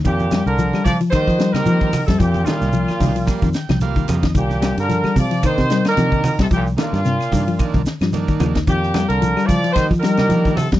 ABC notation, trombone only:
X:1
M:4/4
L:1/16
Q:"Swing 16ths" 1/4=111
K:Cm
V:1 name="Trombone" clef=bass
B,,3 D,3 F,2 E,3 E,4 C, | B,,2 B,,8 z6 | B,,3 D,3 F,2 E,3 E,4 C, | B,,2 B,,8 z6 |
B,,3 D,3 F,2 E,2 E,4 C,2 |]